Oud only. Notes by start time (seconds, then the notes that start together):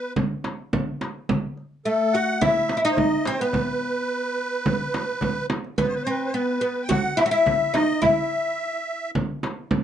Already playing: B3
1.85 A3
2.15 F#4
2.41 E4
2.77 E4
2.85 D#4
3.27 C4
3.41 B3
5.78 B3
6.07 C4
6.34 B3
6.61 B3
6.89 F#4
7.17 E4
7.26 F#4
7.31 E4
7.74 D#4
8.02 E4